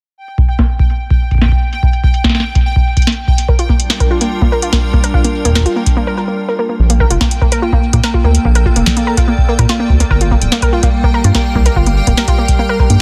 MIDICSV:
0, 0, Header, 1, 6, 480
1, 0, Start_track
1, 0, Key_signature, -2, "major"
1, 0, Tempo, 413793
1, 203, Time_signature, 4, 2, 24, 8
1, 15101, End_track
2, 0, Start_track
2, 0, Title_t, "Synth texture"
2, 0, Program_c, 0, 99
2, 206, Note_on_c, 0, 79, 73
2, 6925, Note_off_c, 0, 79, 0
2, 7882, Note_on_c, 0, 79, 77
2, 15101, Note_off_c, 0, 79, 0
2, 15101, End_track
3, 0, Start_track
3, 0, Title_t, "Ambient pad"
3, 0, Program_c, 1, 92
3, 4044, Note_on_c, 1, 55, 68
3, 4231, Note_on_c, 1, 62, 79
3, 4297, Note_on_c, 1, 65, 73
3, 4538, Note_on_c, 1, 70, 83
3, 6922, Note_off_c, 1, 65, 0
3, 6922, Note_off_c, 1, 70, 0
3, 6924, Note_off_c, 1, 55, 0
3, 6924, Note_off_c, 1, 62, 0
3, 7880, Note_on_c, 1, 58, 78
3, 9076, Note_on_c, 1, 69, 76
3, 9610, Note_on_c, 1, 74, 84
3, 11722, Note_on_c, 1, 55, 81
3, 11723, Note_off_c, 1, 69, 0
3, 12254, Note_on_c, 1, 77, 83
3, 12275, Note_on_c, 1, 67, 83
3, 12523, Note_off_c, 1, 74, 0
3, 12789, Note_off_c, 1, 58, 0
3, 12813, Note_on_c, 1, 70, 68
3, 15101, Note_off_c, 1, 55, 0
3, 15101, Note_off_c, 1, 67, 0
3, 15101, Note_off_c, 1, 70, 0
3, 15101, Note_off_c, 1, 77, 0
3, 15101, End_track
4, 0, Start_track
4, 0, Title_t, "Synth arpeggio sound"
4, 0, Program_c, 2, 84
4, 4044, Note_on_c, 2, 70, 92
4, 4141, Note_off_c, 2, 70, 0
4, 4164, Note_on_c, 2, 65, 97
4, 4261, Note_off_c, 2, 65, 0
4, 4284, Note_on_c, 2, 58, 97
4, 4342, Note_off_c, 2, 58, 0
4, 4524, Note_on_c, 2, 58, 98
4, 4582, Note_off_c, 2, 58, 0
4, 4644, Note_on_c, 2, 70, 98
4, 4741, Note_off_c, 2, 70, 0
4, 4764, Note_on_c, 2, 65, 104
4, 4861, Note_off_c, 2, 65, 0
4, 4884, Note_on_c, 2, 58, 102
4, 4942, Note_off_c, 2, 58, 0
4, 5124, Note_on_c, 2, 58, 99
4, 5182, Note_off_c, 2, 58, 0
4, 5245, Note_on_c, 2, 70, 99
4, 5341, Note_off_c, 2, 70, 0
4, 5365, Note_on_c, 2, 65, 101
4, 5462, Note_off_c, 2, 65, 0
4, 5484, Note_on_c, 2, 58, 93
4, 5542, Note_off_c, 2, 58, 0
4, 5723, Note_on_c, 2, 58, 99
4, 5782, Note_off_c, 2, 58, 0
4, 5843, Note_on_c, 2, 70, 100
4, 5941, Note_off_c, 2, 70, 0
4, 5963, Note_on_c, 2, 65, 99
4, 6060, Note_off_c, 2, 65, 0
4, 6083, Note_on_c, 2, 58, 94
4, 6142, Note_off_c, 2, 58, 0
4, 6323, Note_on_c, 2, 58, 97
4, 6382, Note_off_c, 2, 58, 0
4, 6442, Note_on_c, 2, 70, 96
4, 6540, Note_off_c, 2, 70, 0
4, 6562, Note_on_c, 2, 65, 95
4, 6660, Note_off_c, 2, 65, 0
4, 6682, Note_on_c, 2, 58, 103
4, 6741, Note_off_c, 2, 58, 0
4, 6922, Note_on_c, 2, 58, 99
4, 6981, Note_off_c, 2, 58, 0
4, 7043, Note_on_c, 2, 70, 98
4, 7140, Note_off_c, 2, 70, 0
4, 7163, Note_on_c, 2, 70, 72
4, 7261, Note_off_c, 2, 70, 0
4, 7282, Note_on_c, 2, 58, 72
4, 7380, Note_off_c, 2, 58, 0
4, 7523, Note_on_c, 2, 70, 74
4, 7582, Note_off_c, 2, 70, 0
4, 7643, Note_on_c, 2, 58, 103
4, 7741, Note_off_c, 2, 58, 0
4, 7761, Note_on_c, 2, 58, 78
4, 7860, Note_off_c, 2, 58, 0
4, 8001, Note_on_c, 2, 58, 97
4, 8061, Note_off_c, 2, 58, 0
4, 8122, Note_on_c, 2, 70, 102
4, 8220, Note_off_c, 2, 70, 0
4, 8241, Note_on_c, 2, 65, 97
4, 8340, Note_off_c, 2, 65, 0
4, 8362, Note_on_c, 2, 58, 100
4, 8421, Note_off_c, 2, 58, 0
4, 8602, Note_on_c, 2, 58, 102
4, 8661, Note_off_c, 2, 58, 0
4, 8723, Note_on_c, 2, 70, 99
4, 8821, Note_off_c, 2, 70, 0
4, 8842, Note_on_c, 2, 65, 97
4, 8940, Note_off_c, 2, 65, 0
4, 8963, Note_on_c, 2, 58, 99
4, 9022, Note_off_c, 2, 58, 0
4, 9203, Note_on_c, 2, 58, 98
4, 9262, Note_off_c, 2, 58, 0
4, 9323, Note_on_c, 2, 70, 94
4, 9420, Note_off_c, 2, 70, 0
4, 9443, Note_on_c, 2, 65, 101
4, 9541, Note_off_c, 2, 65, 0
4, 9563, Note_on_c, 2, 58, 103
4, 9622, Note_off_c, 2, 58, 0
4, 9803, Note_on_c, 2, 58, 96
4, 9862, Note_off_c, 2, 58, 0
4, 9922, Note_on_c, 2, 70, 98
4, 10020, Note_off_c, 2, 70, 0
4, 10042, Note_on_c, 2, 65, 100
4, 10140, Note_off_c, 2, 65, 0
4, 10162, Note_on_c, 2, 58, 98
4, 10221, Note_off_c, 2, 58, 0
4, 10401, Note_on_c, 2, 58, 98
4, 10461, Note_off_c, 2, 58, 0
4, 10521, Note_on_c, 2, 70, 103
4, 10620, Note_off_c, 2, 70, 0
4, 10641, Note_on_c, 2, 65, 97
4, 10740, Note_off_c, 2, 65, 0
4, 10761, Note_on_c, 2, 58, 101
4, 10821, Note_off_c, 2, 58, 0
4, 11003, Note_on_c, 2, 58, 96
4, 11062, Note_off_c, 2, 58, 0
4, 11122, Note_on_c, 2, 70, 93
4, 11220, Note_off_c, 2, 70, 0
4, 11243, Note_on_c, 2, 65, 103
4, 11341, Note_off_c, 2, 65, 0
4, 11364, Note_on_c, 2, 58, 102
4, 11422, Note_off_c, 2, 58, 0
4, 11603, Note_on_c, 2, 58, 100
4, 11662, Note_off_c, 2, 58, 0
4, 11724, Note_on_c, 2, 70, 100
4, 11821, Note_off_c, 2, 70, 0
4, 11844, Note_on_c, 2, 65, 91
4, 11941, Note_off_c, 2, 65, 0
4, 11964, Note_on_c, 2, 58, 99
4, 12022, Note_off_c, 2, 58, 0
4, 12203, Note_on_c, 2, 58, 99
4, 12262, Note_off_c, 2, 58, 0
4, 12325, Note_on_c, 2, 70, 99
4, 12422, Note_off_c, 2, 70, 0
4, 12444, Note_on_c, 2, 65, 101
4, 12541, Note_off_c, 2, 65, 0
4, 12564, Note_on_c, 2, 58, 101
4, 12622, Note_off_c, 2, 58, 0
4, 12804, Note_on_c, 2, 58, 102
4, 12862, Note_off_c, 2, 58, 0
4, 12924, Note_on_c, 2, 70, 98
4, 13021, Note_off_c, 2, 70, 0
4, 13044, Note_on_c, 2, 65, 98
4, 13141, Note_off_c, 2, 65, 0
4, 13164, Note_on_c, 2, 58, 95
4, 13222, Note_off_c, 2, 58, 0
4, 13404, Note_on_c, 2, 58, 101
4, 13462, Note_off_c, 2, 58, 0
4, 13524, Note_on_c, 2, 70, 103
4, 13621, Note_off_c, 2, 70, 0
4, 13644, Note_on_c, 2, 65, 98
4, 13741, Note_off_c, 2, 65, 0
4, 13764, Note_on_c, 2, 58, 94
4, 13822, Note_off_c, 2, 58, 0
4, 14005, Note_on_c, 2, 58, 96
4, 14063, Note_off_c, 2, 58, 0
4, 14126, Note_on_c, 2, 70, 95
4, 14222, Note_off_c, 2, 70, 0
4, 14245, Note_on_c, 2, 65, 95
4, 14342, Note_off_c, 2, 65, 0
4, 14365, Note_on_c, 2, 58, 101
4, 14423, Note_off_c, 2, 58, 0
4, 14605, Note_on_c, 2, 58, 100
4, 14663, Note_off_c, 2, 58, 0
4, 14724, Note_on_c, 2, 70, 102
4, 14821, Note_off_c, 2, 70, 0
4, 14844, Note_on_c, 2, 70, 74
4, 14941, Note_off_c, 2, 70, 0
4, 14964, Note_on_c, 2, 58, 72
4, 15061, Note_off_c, 2, 58, 0
4, 15101, End_track
5, 0, Start_track
5, 0, Title_t, "Analog synth bass"
5, 0, Program_c, 3, 38
5, 7883, Note_on_c, 3, 34, 100
5, 8177, Note_off_c, 3, 34, 0
5, 8242, Note_on_c, 3, 29, 95
5, 8322, Note_off_c, 3, 29, 0
5, 9202, Note_on_c, 3, 46, 80
5, 9282, Note_off_c, 3, 46, 0
5, 9562, Note_on_c, 3, 38, 96
5, 9720, Note_off_c, 3, 38, 0
5, 9801, Note_on_c, 3, 34, 94
5, 10097, Note_off_c, 3, 34, 0
5, 10162, Note_on_c, 3, 29, 92
5, 10242, Note_off_c, 3, 29, 0
5, 11122, Note_on_c, 3, 46, 83
5, 11201, Note_off_c, 3, 46, 0
5, 11481, Note_on_c, 3, 38, 96
5, 11640, Note_off_c, 3, 38, 0
5, 11721, Note_on_c, 3, 31, 95
5, 12017, Note_off_c, 3, 31, 0
5, 12081, Note_on_c, 3, 26, 91
5, 12161, Note_off_c, 3, 26, 0
5, 13041, Note_on_c, 3, 43, 83
5, 13121, Note_off_c, 3, 43, 0
5, 13401, Note_on_c, 3, 36, 103
5, 13560, Note_off_c, 3, 36, 0
5, 13641, Note_on_c, 3, 31, 94
5, 13937, Note_off_c, 3, 31, 0
5, 14001, Note_on_c, 3, 26, 95
5, 14081, Note_off_c, 3, 26, 0
5, 14963, Note_on_c, 3, 43, 80
5, 15042, Note_off_c, 3, 43, 0
5, 15101, End_track
6, 0, Start_track
6, 0, Title_t, "Drums"
6, 323, Note_on_c, 9, 42, 46
6, 439, Note_off_c, 9, 42, 0
6, 442, Note_on_c, 9, 36, 91
6, 558, Note_off_c, 9, 36, 0
6, 562, Note_on_c, 9, 42, 63
6, 678, Note_off_c, 9, 42, 0
6, 682, Note_on_c, 9, 36, 104
6, 683, Note_on_c, 9, 38, 103
6, 798, Note_off_c, 9, 36, 0
6, 799, Note_off_c, 9, 38, 0
6, 922, Note_on_c, 9, 36, 97
6, 1038, Note_off_c, 9, 36, 0
6, 1043, Note_on_c, 9, 42, 63
6, 1159, Note_off_c, 9, 42, 0
6, 1282, Note_on_c, 9, 36, 92
6, 1398, Note_off_c, 9, 36, 0
6, 1522, Note_on_c, 9, 36, 47
6, 1522, Note_on_c, 9, 42, 62
6, 1562, Note_off_c, 9, 36, 0
6, 1562, Note_on_c, 9, 36, 52
6, 1602, Note_off_c, 9, 36, 0
6, 1602, Note_on_c, 9, 36, 64
6, 1638, Note_off_c, 9, 42, 0
6, 1642, Note_off_c, 9, 36, 0
6, 1642, Note_on_c, 9, 36, 75
6, 1642, Note_on_c, 9, 38, 111
6, 1682, Note_off_c, 9, 36, 0
6, 1682, Note_on_c, 9, 36, 84
6, 1722, Note_off_c, 9, 36, 0
6, 1722, Note_on_c, 9, 36, 91
6, 1758, Note_off_c, 9, 38, 0
6, 1762, Note_off_c, 9, 36, 0
6, 1762, Note_on_c, 9, 36, 94
6, 1878, Note_off_c, 9, 36, 0
6, 2002, Note_on_c, 9, 42, 65
6, 2118, Note_off_c, 9, 42, 0
6, 2122, Note_on_c, 9, 36, 98
6, 2238, Note_off_c, 9, 36, 0
6, 2242, Note_on_c, 9, 42, 48
6, 2358, Note_off_c, 9, 42, 0
6, 2362, Note_on_c, 9, 36, 102
6, 2478, Note_off_c, 9, 36, 0
6, 2482, Note_on_c, 9, 42, 65
6, 2598, Note_off_c, 9, 42, 0
6, 2602, Note_on_c, 9, 36, 98
6, 2602, Note_on_c, 9, 38, 101
6, 2662, Note_off_c, 9, 38, 0
6, 2662, Note_on_c, 9, 38, 87
6, 2718, Note_off_c, 9, 36, 0
6, 2722, Note_off_c, 9, 38, 0
6, 2722, Note_on_c, 9, 38, 71
6, 2722, Note_on_c, 9, 42, 50
6, 2783, Note_off_c, 9, 38, 0
6, 2783, Note_on_c, 9, 38, 57
6, 2838, Note_off_c, 9, 42, 0
6, 2899, Note_off_c, 9, 38, 0
6, 2962, Note_on_c, 9, 36, 103
6, 2962, Note_on_c, 9, 42, 63
6, 3078, Note_off_c, 9, 36, 0
6, 3078, Note_off_c, 9, 42, 0
6, 3202, Note_on_c, 9, 36, 107
6, 3318, Note_off_c, 9, 36, 0
6, 3442, Note_on_c, 9, 36, 93
6, 3442, Note_on_c, 9, 42, 59
6, 3503, Note_off_c, 9, 42, 0
6, 3503, Note_on_c, 9, 42, 51
6, 3558, Note_off_c, 9, 36, 0
6, 3563, Note_off_c, 9, 42, 0
6, 3563, Note_on_c, 9, 38, 114
6, 3563, Note_on_c, 9, 42, 40
6, 3623, Note_off_c, 9, 42, 0
6, 3623, Note_on_c, 9, 42, 33
6, 3679, Note_off_c, 9, 38, 0
6, 3739, Note_off_c, 9, 42, 0
6, 3803, Note_on_c, 9, 36, 103
6, 3919, Note_off_c, 9, 36, 0
6, 3923, Note_on_c, 9, 42, 66
6, 4039, Note_off_c, 9, 42, 0
6, 4043, Note_on_c, 9, 36, 118
6, 4159, Note_off_c, 9, 36, 0
6, 4163, Note_on_c, 9, 42, 48
6, 4279, Note_off_c, 9, 42, 0
6, 4283, Note_on_c, 9, 36, 101
6, 4399, Note_off_c, 9, 36, 0
6, 4403, Note_on_c, 9, 42, 61
6, 4519, Note_off_c, 9, 42, 0
6, 4522, Note_on_c, 9, 38, 110
6, 4638, Note_off_c, 9, 38, 0
6, 4643, Note_on_c, 9, 36, 96
6, 4643, Note_on_c, 9, 42, 47
6, 4759, Note_off_c, 9, 36, 0
6, 4759, Note_off_c, 9, 42, 0
6, 4883, Note_on_c, 9, 42, 63
6, 4999, Note_off_c, 9, 42, 0
6, 5123, Note_on_c, 9, 36, 102
6, 5239, Note_off_c, 9, 36, 0
6, 5363, Note_on_c, 9, 42, 64
6, 5479, Note_off_c, 9, 42, 0
6, 5483, Note_on_c, 9, 36, 100
6, 5483, Note_on_c, 9, 38, 115
6, 5599, Note_off_c, 9, 36, 0
6, 5599, Note_off_c, 9, 38, 0
6, 5723, Note_on_c, 9, 36, 114
6, 5839, Note_off_c, 9, 36, 0
6, 5843, Note_on_c, 9, 42, 62
6, 5959, Note_off_c, 9, 42, 0
6, 5962, Note_on_c, 9, 36, 101
6, 6078, Note_off_c, 9, 36, 0
6, 6084, Note_on_c, 9, 42, 46
6, 6200, Note_off_c, 9, 42, 0
6, 6322, Note_on_c, 9, 36, 45
6, 6323, Note_on_c, 9, 42, 63
6, 6352, Note_off_c, 9, 36, 0
6, 6352, Note_on_c, 9, 36, 51
6, 6382, Note_off_c, 9, 36, 0
6, 6382, Note_on_c, 9, 36, 56
6, 6412, Note_off_c, 9, 36, 0
6, 6412, Note_on_c, 9, 36, 66
6, 6439, Note_off_c, 9, 42, 0
6, 6442, Note_off_c, 9, 36, 0
6, 6442, Note_on_c, 9, 36, 73
6, 6443, Note_on_c, 9, 38, 118
6, 6472, Note_off_c, 9, 36, 0
6, 6472, Note_on_c, 9, 36, 74
6, 6502, Note_off_c, 9, 36, 0
6, 6502, Note_on_c, 9, 36, 86
6, 6532, Note_off_c, 9, 36, 0
6, 6532, Note_on_c, 9, 36, 89
6, 6559, Note_off_c, 9, 38, 0
6, 6563, Note_on_c, 9, 42, 46
6, 6648, Note_off_c, 9, 36, 0
6, 6679, Note_off_c, 9, 42, 0
6, 6802, Note_on_c, 9, 36, 100
6, 6802, Note_on_c, 9, 42, 63
6, 6918, Note_off_c, 9, 36, 0
6, 6918, Note_off_c, 9, 42, 0
6, 8002, Note_on_c, 9, 42, 52
6, 8118, Note_off_c, 9, 42, 0
6, 8122, Note_on_c, 9, 36, 91
6, 8238, Note_off_c, 9, 36, 0
6, 8242, Note_on_c, 9, 42, 70
6, 8358, Note_off_c, 9, 42, 0
6, 8362, Note_on_c, 9, 36, 112
6, 8362, Note_on_c, 9, 38, 105
6, 8478, Note_off_c, 9, 36, 0
6, 8478, Note_off_c, 9, 38, 0
6, 8482, Note_on_c, 9, 42, 53
6, 8598, Note_off_c, 9, 42, 0
6, 8602, Note_on_c, 9, 36, 103
6, 8718, Note_off_c, 9, 36, 0
6, 8722, Note_on_c, 9, 42, 66
6, 8838, Note_off_c, 9, 42, 0
6, 8962, Note_on_c, 9, 36, 95
6, 9078, Note_off_c, 9, 36, 0
6, 9201, Note_on_c, 9, 42, 65
6, 9202, Note_on_c, 9, 36, 103
6, 9317, Note_off_c, 9, 42, 0
6, 9318, Note_off_c, 9, 36, 0
6, 9321, Note_on_c, 9, 38, 108
6, 9437, Note_off_c, 9, 38, 0
6, 9442, Note_on_c, 9, 36, 97
6, 9558, Note_off_c, 9, 36, 0
6, 9682, Note_on_c, 9, 42, 69
6, 9798, Note_off_c, 9, 42, 0
6, 9802, Note_on_c, 9, 36, 103
6, 9918, Note_off_c, 9, 36, 0
6, 9922, Note_on_c, 9, 42, 50
6, 10038, Note_off_c, 9, 42, 0
6, 10042, Note_on_c, 9, 36, 108
6, 10158, Note_off_c, 9, 36, 0
6, 10162, Note_on_c, 9, 42, 69
6, 10278, Note_off_c, 9, 42, 0
6, 10281, Note_on_c, 9, 38, 117
6, 10282, Note_on_c, 9, 36, 103
6, 10397, Note_off_c, 9, 38, 0
6, 10398, Note_off_c, 9, 36, 0
6, 10401, Note_on_c, 9, 42, 52
6, 10517, Note_off_c, 9, 42, 0
6, 10642, Note_on_c, 9, 36, 108
6, 10642, Note_on_c, 9, 42, 69
6, 10758, Note_off_c, 9, 36, 0
6, 10758, Note_off_c, 9, 42, 0
6, 10882, Note_on_c, 9, 36, 117
6, 10998, Note_off_c, 9, 36, 0
6, 11122, Note_on_c, 9, 36, 100
6, 11122, Note_on_c, 9, 42, 66
6, 11238, Note_off_c, 9, 36, 0
6, 11238, Note_off_c, 9, 42, 0
6, 11242, Note_on_c, 9, 38, 112
6, 11358, Note_off_c, 9, 38, 0
6, 11482, Note_on_c, 9, 36, 101
6, 11598, Note_off_c, 9, 36, 0
6, 11602, Note_on_c, 9, 42, 65
6, 11718, Note_off_c, 9, 42, 0
6, 11722, Note_on_c, 9, 36, 122
6, 11838, Note_off_c, 9, 36, 0
6, 11842, Note_on_c, 9, 42, 49
6, 11958, Note_off_c, 9, 42, 0
6, 11962, Note_on_c, 9, 36, 104
6, 12078, Note_off_c, 9, 36, 0
6, 12082, Note_on_c, 9, 42, 64
6, 12198, Note_off_c, 9, 42, 0
6, 12202, Note_on_c, 9, 38, 116
6, 12318, Note_off_c, 9, 38, 0
6, 12322, Note_on_c, 9, 36, 98
6, 12322, Note_on_c, 9, 42, 51
6, 12438, Note_off_c, 9, 36, 0
6, 12438, Note_off_c, 9, 42, 0
6, 12561, Note_on_c, 9, 42, 62
6, 12562, Note_on_c, 9, 36, 116
6, 12677, Note_off_c, 9, 42, 0
6, 12678, Note_off_c, 9, 36, 0
6, 12801, Note_on_c, 9, 36, 103
6, 12917, Note_off_c, 9, 36, 0
6, 13042, Note_on_c, 9, 42, 64
6, 13158, Note_off_c, 9, 42, 0
6, 13161, Note_on_c, 9, 36, 105
6, 13161, Note_on_c, 9, 38, 118
6, 13277, Note_off_c, 9, 36, 0
6, 13277, Note_off_c, 9, 38, 0
6, 13402, Note_on_c, 9, 36, 122
6, 13518, Note_off_c, 9, 36, 0
6, 13522, Note_on_c, 9, 42, 67
6, 13638, Note_off_c, 9, 42, 0
6, 13642, Note_on_c, 9, 36, 102
6, 13758, Note_off_c, 9, 36, 0
6, 13763, Note_on_c, 9, 42, 47
6, 13879, Note_off_c, 9, 42, 0
6, 14002, Note_on_c, 9, 36, 100
6, 14002, Note_on_c, 9, 42, 61
6, 14118, Note_off_c, 9, 36, 0
6, 14118, Note_off_c, 9, 42, 0
6, 14122, Note_on_c, 9, 38, 115
6, 14238, Note_off_c, 9, 38, 0
6, 14242, Note_on_c, 9, 36, 111
6, 14242, Note_on_c, 9, 42, 50
6, 14358, Note_off_c, 9, 36, 0
6, 14358, Note_off_c, 9, 42, 0
6, 14482, Note_on_c, 9, 36, 101
6, 14482, Note_on_c, 9, 42, 63
6, 14598, Note_off_c, 9, 36, 0
6, 14598, Note_off_c, 9, 42, 0
6, 14842, Note_on_c, 9, 36, 106
6, 14958, Note_off_c, 9, 36, 0
6, 14963, Note_on_c, 9, 42, 60
6, 15079, Note_off_c, 9, 42, 0
6, 15101, End_track
0, 0, End_of_file